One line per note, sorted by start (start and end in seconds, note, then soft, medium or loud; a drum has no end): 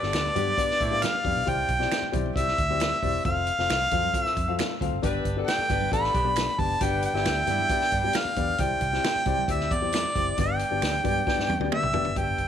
0.00 0.10 G1 medium
0.00 0.31 G2 medium
0.00 0.34 B3 medium
0.00 0.26 B3 medium
0.00 0.34 D4 medium
0.00 0.26 D4 medium
0.00 0.26 G4 medium
0.00 0.34 A4 medium
0.00 1.04 D5 loud
0.00 0.26 D5 medium
0.00 snare soft
0.13 0.29 D2 medium
0.13 finger snap medium
0.13 snare loud
0.13 closed hi-hat medium
0.13 muted conga soft
0.25 muted conga soft
0.35 0.52 G2 loud
0.35 0.51 B3 medium
0.35 0.77 B3 medium
0.35 0.77 D4 medium
0.35 0.51 D4 medium
0.35 0.51 G4 medium
0.35 0.77 G4 medium
0.35 0.51 D5 loud
0.35 closed hi-hat medium
0.35 high conga medium
0.35 low conga medium
0.48 high conga medium
0.57 0.81 B3 medium
0.57 0.81 D4 medium
0.57 0.81 G4 medium
0.57 0.81 D5 medium
0.57 kick medium
0.57 closed hi-hat loud
0.68 muted fingered electric bass stroke soft
0.68 snare soft
0.68 muted conga soft
0.80 1.04 A2 medium
0.80 0.98 A3 medium
0.80 0.98 C4 medium
0.80 0.98 E4 medium
0.80 kick loud
0.80 closed hi-hat medium
0.91 1.15 B3 medium
0.91 1.15 D4 medium
0.91 1.15 G4 medium
0.91 1.15 F5 medium
0.91 high conga soft
1.02 1.51 F5 loud
1.02 finger snap medium
1.02 snare loud
1.02 closed hi-hat loud
1.02 high conga medium
1.14 muted conga soft
1.24 1.33 F2 loud
1.24 1.40 B3 medium
1.24 1.40 D4 medium
1.24 1.40 G4 medium
1.24 1.40 D5 medium
1.24 kick medium
1.24 open hi-hat medium
1.24 high conga medium
1.24 low conga medium
1.35 1.44 B1 medium
1.45 1.63 C2 loud
1.45 2.09 C3 medium
1.45 1.70 C4 medium
1.45 1.70 E4 medium
1.45 1.70 G4 medium
1.45 1.70 D5 medium
1.45 2.15 G5 loud
1.45 kick loud
1.45 closed hi-hat loud
1.45 muted conga soft
1.45 low conga medium
1.58 muted conga soft
1.69 1.85 B1 medium
1.69 kick medium
1.69 closed hi-hat medium
1.79 2.03 C4 medium
1.79 2.03 E4 medium
1.79 2.03 G4 medium
1.79 2.04 D5 medium
1.79 snare soft
1.91 finger snap medium
1.91 snare medium
1.91 closed hi-hat medium
2.02 muted fingered electric bass stroke soft
2.02 muted conga soft
2.12 2.29 B1 loud
2.12 2.29 C4 medium
2.12 2.29 E4 medium
2.12 2.29 G4 medium
2.12 2.29 D5 medium
2.12 kick loud
2.12 closed hi-hat medium
2.12 high conga medium
2.12 low conga medium
2.26 high conga medium
2.35 2.52 C2 loud
2.35 2.59 C4 medium
2.35 2.59 E4 medium
2.35 2.59 G4 medium
2.35 2.59 D5 medium
2.35 3.21 E5 loud
2.35 kick loud
2.35 closed hi-hat medium
2.47 snare soft
2.47 muted conga soft
2.58 2.91 D2 medium
2.58 kick loud
2.58 closed hi-hat medium
2.69 2.93 C4 medium
2.69 2.93 E4 medium
2.69 2.93 G4 medium
2.69 2.93 D5 medium
2.69 high conga soft
2.80 finger snap medium
2.80 snare loud
2.80 closed hi-hat loud
2.80 muted conga soft
2.80 high conga medium
2.92 muted conga soft
3.02 3.19 E1 medium
3.02 3.18 C4 medium
3.02 3.19 E4 medium
3.02 3.19 G4 medium
3.02 3.19 D5 medium
3.02 kick medium
3.02 open hi-hat medium
3.02 high conga medium
3.02 low conga medium
3.25 3.49 F1 loud
3.25 3.49 C4 medium
3.25 3.49 F4 medium
3.25 3.49 A4 medium
3.25 4.23 F5 loud
3.25 3.49 F5 medium
3.25 kick loud
3.25 closed hi-hat loud
3.25 low conga medium
3.47 closed hi-hat medium
3.58 3.66 F1 medium
3.58 3.82 C4 medium
3.58 3.82 F4 medium
3.58 3.82 A4 medium
3.58 3.82 F5 medium
3.58 snare soft
3.70 3.86 C2 medium
3.70 finger snap loud
3.70 snare medium
3.70 closed hi-hat medium
3.70 muted conga soft
3.81 muted conga soft
3.91 4.08 F2 loud
3.91 4.08 C4 medium
3.91 4.08 F4 medium
3.91 4.08 A4 medium
3.91 4.08 F5 medium
3.91 kick loud
3.91 closed hi-hat medium
3.91 high conga medium
3.91 low conga medium
4.04 high conga medium
4.14 4.38 C4 medium
4.14 4.38 F4 medium
4.14 4.38 A4 medium
4.14 4.38 F5 loud
4.14 kick loud
4.14 closed hi-hat medium
4.23 4.77 E5 loud
4.23 muted fingered electric bass stroke soft
4.23 snare soft
4.23 muted conga soft
4.37 4.61 F2 medium
4.37 kick loud
4.37 closed hi-hat medium
4.47 4.72 C4 medium
4.47 4.72 F4 medium
4.47 4.72 A4 medium
4.47 4.71 F5 medium
4.47 high conga soft
4.59 finger snap loud
4.59 snare loud
4.59 closed hi-hat loud
4.59 high conga medium
4.81 4.89 D2 medium
4.81 4.97 C4 medium
4.81 4.97 F4 medium
4.81 4.97 A4 medium
4.81 4.97 F5 medium
4.81 kick medium
4.81 closed hi-hat medium
4.81 high conga medium
4.81 low conga medium
4.92 5.00 F#1 medium
5.02 5.19 G1 loud
5.02 5.66 G2 medium
5.02 5.26 B3 medium
5.02 5.26 D4 medium
5.02 5.35 D4 loud
5.02 5.26 G4 medium
5.02 5.35 G4 loud
5.02 5.35 B4 loud
5.02 5.27 D5 medium
5.02 kick loud
5.02 closed hi-hat loud
5.02 low conga medium
5.14 muted conga soft
5.25 5.41 G1 medium
5.25 kick medium
5.25 closed hi-hat medium
5.36 5.60 B3 medium
5.36 5.68 B3 medium
5.36 5.60 D4 medium
5.36 5.69 D4 medium
5.36 5.60 G4 medium
5.36 5.68 A4 medium
5.36 5.60 D5 medium
5.48 5.89 G5 loud
5.48 finger snap loud
5.48 snare loud
5.48 closed hi-hat medium
5.58 muted fingered electric bass stroke soft
5.70 5.86 G1 medium
5.70 5.86 B3 medium
5.70 5.88 D4 medium
5.70 5.86 D4 medium
5.70 5.86 G4 medium
5.70 5.88 G4 medium
5.70 5.88 B4 medium
5.70 5.86 D5 medium
5.70 kick loud
5.70 closed hi-hat medium
5.70 high conga medium
5.70 low conga medium
5.82 high conga medium
5.92 6.08 A1 loud
5.92 6.16 B3 medium
5.92 6.16 D4 medium
5.92 6.10 D4 loud
5.92 6.10 F4 medium
5.92 6.16 G4 medium
5.92 6.10 A4 loud
5.92 6.16 D5 medium
5.92 6.62 B5 loud
5.92 kick loud
5.92 closed hi-hat medium
5.92 muted conga soft
6.04 snare soft
6.12 6.47 B1 medium
6.12 6.31 B3 medium
6.12 6.32 D4 medium
6.12 6.32 G4 medium
6.12 kick loud
6.12 closed hi-hat medium
6.24 6.49 B3 medium
6.24 6.49 D4 medium
6.24 6.49 G4 medium
6.24 6.49 D5 medium
6.24 high conga soft
6.36 finger snap medium
6.36 snare loud
6.36 closed hi-hat medium
6.36 high conga medium
6.58 6.75 F#1 medium
6.58 6.74 B3 medium
6.58 6.75 D4 medium
6.58 6.74 G4 medium
6.58 6.75 D5 medium
6.58 6.84 A5 loud
6.58 kick loud
6.58 open hi-hat medium
6.58 high conga medium
6.58 low conga medium
6.81 7.05 G1 loud
6.81 7.44 G2 medium
6.81 7.13 G3 loud
6.81 7.05 B3 medium
6.81 7.13 B3 loud
6.81 7.12 D4 loud
6.81 7.05 D4 medium
6.81 7.05 G4 medium
6.81 7.05 D5 medium
6.81 7.04 G5 loud
6.81 kick loud
6.81 closed hi-hat loud
6.81 muted conga soft
6.81 low conga medium
6.92 muted conga soft
7.02 8.20 G5 loud
7.02 closed hi-hat medium
7.13 7.27 G1 medium
7.13 7.46 G3 medium
7.13 7.46 B3 medium
7.13 7.38 B3 medium
7.13 7.38 D4 medium
7.13 7.46 E4 medium
7.13 7.38 G4 medium
7.13 7.38 D5 medium
7.13 snare soft
7.25 7.42 D2 medium
7.25 finger snap loud
7.25 snare loud
7.25 closed hi-hat medium
7.25 muted conga soft
7.47 7.63 G2 medium
7.47 7.90 G3 medium
7.47 7.63 B3 medium
7.47 7.90 B3 medium
7.47 7.63 D4 medium
7.47 7.90 E4 loud
7.47 7.63 G4 medium
7.47 7.64 D5 medium
7.47 closed hi-hat medium
7.47 high conga medium
7.47 low conga medium
7.60 high conga medium
7.69 7.94 B3 medium
7.69 7.94 D4 medium
7.69 7.94 G4 medium
7.69 7.94 D5 loud
7.69 kick loud
7.69 closed hi-hat medium
7.80 muted fingered electric bass stroke soft
7.80 snare soft
7.80 muted conga soft
7.91 8.08 G2 medium
7.91 8.10 G3 medium
7.91 8.10 B3 medium
7.91 8.10 D4 medium
7.91 kick medium
7.91 closed hi-hat medium
8.03 8.28 B3 medium
8.03 8.28 D4 medium
8.03 8.28 G4 medium
8.03 8.28 D5 medium
8.03 high conga soft
8.13 finger snap loud
8.13 snare loud
8.13 closed hi-hat loud
8.13 high conga medium
8.18 8.63 F5 loud
8.25 muted fingered electric bass stroke soft
8.25 muted conga soft
8.36 8.53 E2 medium
8.36 8.53 B3 medium
8.36 8.53 D4 medium
8.36 8.53 G4 medium
8.36 8.53 D5 medium
8.36 kick loud
8.36 closed hi-hat medium
8.36 high conga medium
8.36 low conga medium
8.58 8.75 C2 loud
8.58 9.22 C3 medium
8.58 8.83 C4 medium
8.58 8.83 E4 medium
8.58 8.83 G4 medium
8.58 8.83 D5 medium
8.58 9.53 G5 loud
8.58 kick loud
8.58 closed hi-hat loud
8.58 low conga medium
8.70 muted conga soft
8.81 8.97 C2 medium
8.81 kick medium
8.81 closed hi-hat medium
8.92 9.16 C4 medium
8.92 9.16 E4 medium
8.92 9.17 G4 medium
8.92 9.17 D5 medium
8.92 snare soft
9.04 finger snap loud
9.04 snare loud
9.04 closed hi-hat medium
9.04 muted conga soft
9.16 muted fingered electric bass stroke soft
9.26 9.42 C2 medium
9.26 9.42 C4 medium
9.26 9.42 E4 medium
9.26 9.42 G4 medium
9.26 9.42 D5 loud
9.26 kick loud
9.26 closed hi-hat medium
9.26 high conga medium
9.26 low conga medium
9.38 high conga medium
9.48 9.71 D2 loud
9.48 9.72 C4 medium
9.48 9.72 E4 medium
9.48 9.72 G4 medium
9.48 9.72 D5 medium
9.48 9.75 E5 medium
9.48 kick medium
9.48 closed hi-hat loud
9.48 muted conga soft
9.60 snare soft
9.71 10.03 E2 medium
9.71 10.39 D5 loud
9.71 kick loud
9.71 closed hi-hat medium
9.82 10.05 C4 medium
9.82 10.06 E4 medium
9.82 10.05 G4 medium
9.82 10.06 D5 medium
9.82 high conga soft
9.92 finger snap loud
9.92 snare loud
9.92 closed hi-hat loud
9.92 muted conga soft
9.92 high conga medium
10.05 muted conga soft
10.15 10.32 F#1 medium
10.15 10.31 C4 medium
10.15 10.31 E4 medium
10.15 10.31 G4 medium
10.15 10.31 D5 medium
10.15 kick medium
10.15 closed hi-hat medium
10.15 high conga medium
10.15 low conga medium
10.37 10.62 G1 loud
10.37 11.01 G2 medium
10.37 10.62 B3 medium
10.37 10.62 D4 medium
10.37 10.62 G4 medium
10.37 10.62 D5 medium
10.37 11.69 G5 loud
10.37 kick loud
10.37 closed hi-hat loud
10.37 muted conga soft
10.37 low conga medium
10.49 muted conga soft
10.59 closed hi-hat medium
10.71 10.79 G1 medium
10.71 10.95 B3 medium
10.71 10.95 D4 medium
10.71 10.95 G4 medium
10.71 10.95 D5 medium
10.82 10.98 D2 medium
10.82 finger snap medium
10.82 snare medium
10.82 closed hi-hat medium
10.94 muted conga soft
11.04 11.21 G2 loud
11.04 11.20 B3 medium
11.04 11.20 D4 medium
11.04 11.20 G4 medium
11.04 11.20 D5 medium
11.04 kick loud
11.04 closed hi-hat medium
11.04 high conga medium
11.04 low conga medium
11.16 high conga medium
11.27 11.51 B3 medium
11.27 11.51 D4 medium
11.27 11.51 G4 medium
11.27 11.51 D5 loud
11.27 kick loud
11.27 snare medium
11.27 muted conga soft
11.38 11.46 G2 medium
11.38 snare medium
11.38 muted conga soft
11.49 11.57 E2 medium
11.49 high tom medium
11.60 11.68 D2 medium
11.60 11.84 B3 medium
11.60 11.84 D4 medium
11.60 11.84 G4 medium
11.60 11.84 D5 medium
11.60 high tom medium
11.60 high conga soft
11.72 12.19 E5 loud
11.72 finger snap medium
11.72 mid tom loud
11.72 muted conga soft
11.72 high conga medium
11.82 11.91 C2 medium
11.82 mid tom medium
11.94 12.02 F1 medium
11.94 12.10 B3 medium
11.94 12.10 D4 medium
11.94 12.10 G4 medium
11.94 12.10 D5 loud
11.94 floor tom loud
11.94 high conga medium
11.94 low conga medium
12.05 12.13 F#1 medium
12.05 floor tom medium
12.16 12.32 G1 medium
12.16 12.48 G2 medium
12.16 12.40 B3 medium
12.16 12.40 D4 medium
12.16 12.40 G4 medium
12.16 12.40 D5 medium
12.16 12.48 G5 loud
12.16 kick loud
12.16 closed hi-hat medium
12.16 muted conga soft
12.28 muted conga soft
12.38 12.48 G1 medium
12.38 kick medium
12.38 closed hi-hat medium